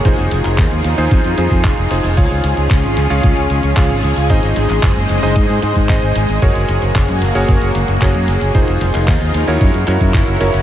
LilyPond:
<<
  \new Staff \with { instrumentName = "Electric grand piano" } { \time 4/4 \key f \phrygian \tempo 4 = 113 <ees' f' aes' c''>4.~ <ees' f' aes' c''>16 <ees' f' aes' c''>8. <ees' f' aes' c''>4 <ees' f' aes' c''>8 | <f' aes' des'' f''>4.~ <f' aes' des'' f''>16 <f' aes' des'' f''>8. r8 <f' aes' des'' f''>4 | <ees' aes' c'' ees''>4.~ <ees' aes' c'' ees''>16 <ees' aes' c'' ees''>8. r8 <ees' aes' c'' ees''>4 | <ges' aes' bes' des''>4.~ <ges' aes' bes' des''>16 <ges' aes' bes' des''>8. r8 <ges' aes' bes' des''>4 |
<ees' f' aes' c''>4.~ <ees' f' aes' c''>16 <fes' ges' bes' des''>8. <fes' ges' bes' des''>4 <fes' ges' bes' des''>8 | }
  \new Staff \with { instrumentName = "Analog synth pad" } { \time 4/4 \key f \phrygian << { aes'1~ | aes'1 | <aes ees''>1 | r1 |
r2 bes'2 | } \\ { <ees' f'>1 | <des' f'>1 | c''1 | <bes ges'>1 |
<ees' f'>2 <fes' ges'>2 | } >> }
  \new Staff \with { instrumentName = "Fingered electric bass" } { \clef bass \time 4/4 \key f \phrygian f,,16 f,,16 f,,16 f,,16 ees,16 ees,16 ees,16 ees,16 f,16 f,16 f,16 f,16 f,,16 f,,16 f,,16 f,,16 | des,16 des,16 des,16 des,16 des,16 aes,,16 des,16 des,16 des,16 des,16 des,16 des,16 des,16 aes,,16 des,16 des,16 | aes,,16 aes,,16 aes,,16 aes,,16 ges,,16 ges,,16 ges,,16 ges,,16 aes,16 aes,16 aes,16 aes,16 aes,,16 aes,,16 aes,,16 aes,,16 | ges,,16 ges,,16 ges,,16 ges,,16 ges,,16 ges,16 ges,,16 ges,,16 ges,,16 ges,,16 ges,,16 ges,,16 ges,,16 ges,16 ges,,16 ges,,16 |
f,,16 f,,16 f,,16 f,,16 ees,16 ees,16 ees,16 ees,16 ges,16 ges,16 ges,16 ges,16 ges,,16 ges,,16 ges,,16 ges,,16 | }
  \new DrumStaff \with { instrumentName = "Drums" } \drummode { \time 4/4 <hh bd>16 hh16 hh16 <hc hh>16 <hc hh bd>16 hh16 hh16 hh16 <hh bd>16 hh16 hh16 <hh bd>16 <hc hh bd>16 hh16 hh16 hh16 | <hh bd>16 hh16 hh16 hh16 <hc hh bd>16 hh16 hh16 hh16 <hh bd>16 hh16 hh16 hh16 <hc hh bd>16 hh16 hh16 hh16 | <hh bd>16 hh16 hh16 <hc hh>16 <hc hh bd>16 hh16 hh16 hh16 <hh bd>16 hh16 hh16 <hh bd>16 <hc hh bd>16 hh16 hh16 hh16 | <hh bd>16 hh16 hh16 hh16 <hc hh bd>16 hh16 hh16 hh16 <hh bd>16 hh16 hh16 hh16 <hc hh bd>16 hh16 hh16 hh16 |
<hh bd>16 hh16 hh16 <hc hh>16 <hc hh bd>16 hh16 hh16 hh16 <hh bd>16 hh16 <hc hh>16 <hh bd>16 <hc hh bd>16 hh16 hh16 hh16 | }
>>